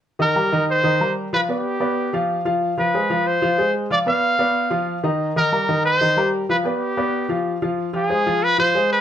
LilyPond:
<<
  \new Staff \with { instrumentName = "Trumpet" } { \time 4/4 \key c \minor \tempo 4 = 186 r8 bes'4. c''4. r8 | b'8 g'2. r8 | r8 b'4. c''4. r8 | d''8 f''2. r8 |
r8 bes'4. c''4. r8 | b'8 g'2. r8 | r8 aes'4. b'8 c''4 b'8 | }
  \new Staff \with { instrumentName = "Grand piano" } { \time 4/4 \key c \minor r8 <ees ees' ees''>8 <g g' bes'>8 <ees ees' ees''>4 <ees ees' ees''>8 <g g' bes'>4 | <f f' f''>8 <b b' d''>4 <b b' d''>4 <f f' f''>4 <f f' f''>8~ | <f f' f''>8 <f f' f''>8 <aes aes' c''>8 <f f' f''>4 <f f' f''>8 <aes aes' c''>4 | <f f' f''>8 <b b' d''>4 <b b' d''>4 <f f' f''>4 <ees ees' ees''>8~ |
<ees ees' ees''>8 <ees ees' ees''>8 <g g' bes'>8 <ees ees' ees''>4 <ees ees' ees''>8 <g g' bes'>4 | <f f' f''>8 <b b' d''>4 <b b' d''>4 <f f' f''>4 <f f' f''>8~ | <f f' f''>8 <f f' f''>8 <aes aes' c''>8 <f f' f''>4 <f f' f''>8 <aes aes' c''>4 | }
>>